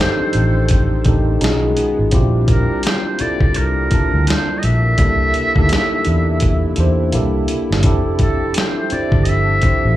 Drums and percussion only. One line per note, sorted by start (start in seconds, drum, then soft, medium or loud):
0.01 snare loud
0.33 closed hi-hat medium
0.69 kick medium
0.69 closed hi-hat medium
1.05 kick medium
1.05 closed hi-hat medium
1.41 snare loud
1.41 closed hi-hat medium
1.77 closed hi-hat medium
2.11 kick loud
2.11 closed hi-hat medium
2.48 kick medium
2.48 closed hi-hat medium
2.83 snare loud
2.83 closed hi-hat medium
3.19 closed hi-hat medium
3.41 kick medium
3.54 closed hi-hat medium
3.91 kick medium
3.91 closed hi-hat medium
4.27 snare loud
4.27 closed hi-hat medium
4.63 closed hi-hat medium
4.98 kick loud
4.98 closed hi-hat medium
5.34 closed hi-hat medium
5.56 kick medium
5.69 snare loud
5.69 closed hi-hat medium
6.05 closed hi-hat medium
6.40 kick medium
6.40 closed hi-hat medium
6.76 closed hi-hat medium
7.12 closed hi-hat medium
7.48 closed hi-hat medium
7.73 snare medium
7.83 kick loud
7.83 closed hi-hat medium
8.19 kick medium
8.19 closed hi-hat medium
8.54 snare loud
8.54 closed hi-hat medium
8.90 closed hi-hat medium
9.12 kick medium
9.25 closed hi-hat medium
9.62 kick medium
9.62 closed hi-hat medium